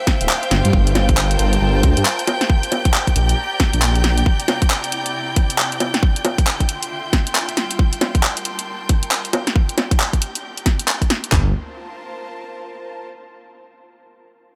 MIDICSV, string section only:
0, 0, Header, 1, 2, 480
1, 0, Start_track
1, 0, Tempo, 441176
1, 798, Time_signature, 4, 2, 24, 8
1, 15834, End_track
2, 0, Start_track
2, 0, Title_t, "String section"
2, 0, Program_c, 0, 48
2, 0, Note_on_c, 0, 72, 85
2, 0, Note_on_c, 0, 76, 85
2, 0, Note_on_c, 0, 77, 86
2, 553, Note_on_c, 0, 65, 94
2, 559, Note_off_c, 0, 76, 0
2, 1112, Note_on_c, 0, 70, 89
2, 1338, Note_off_c, 0, 77, 0
2, 1443, Note_on_c, 0, 81, 78
2, 2477, Note_off_c, 0, 81, 0
2, 2477, Note_on_c, 0, 67, 84
2, 3120, Note_off_c, 0, 70, 0
2, 3302, Note_off_c, 0, 65, 0
2, 3323, Note_on_c, 0, 74, 87
2, 3365, Note_off_c, 0, 72, 0
2, 3449, Note_on_c, 0, 82, 74
2, 4639, Note_on_c, 0, 48, 91
2, 5329, Note_on_c, 0, 64, 89
2, 5416, Note_off_c, 0, 67, 0
2, 6556, Note_off_c, 0, 82, 0
2, 6557, Note_off_c, 0, 64, 0
2, 6558, Note_off_c, 0, 48, 0
2, 6559, Note_on_c, 0, 50, 88
2, 6759, Note_on_c, 0, 65, 89
2, 6930, Note_on_c, 0, 76, 77
2, 7240, Note_off_c, 0, 74, 0
2, 7321, Note_on_c, 0, 84, 94
2, 8234, Note_on_c, 0, 55, 82
2, 8238, Note_off_c, 0, 50, 0
2, 8906, Note_on_c, 0, 70, 85
2, 9018, Note_off_c, 0, 76, 0
2, 9122, Note_on_c, 0, 81, 78
2, 10156, Note_off_c, 0, 55, 0
2, 10156, Note_off_c, 0, 81, 0
2, 10156, Note_on_c, 0, 67, 83
2, 10623, Note_on_c, 0, 74, 74
2, 11037, Note_off_c, 0, 84, 0
2, 11044, Note_off_c, 0, 65, 0
2, 11046, Note_off_c, 0, 70, 0
2, 11131, Note_on_c, 0, 82, 79
2, 12316, Note_off_c, 0, 67, 0
2, 12316, Note_off_c, 0, 74, 0
2, 12317, Note_off_c, 0, 82, 0
2, 12321, Note_on_c, 0, 65, 78
2, 12404, Note_on_c, 0, 70, 79
2, 12487, Note_on_c, 0, 72, 80
2, 12542, Note_on_c, 0, 81, 79
2, 14192, Note_off_c, 0, 70, 0
2, 14195, Note_off_c, 0, 65, 0
2, 14195, Note_off_c, 0, 72, 0
2, 14195, Note_off_c, 0, 81, 0
2, 15834, End_track
0, 0, End_of_file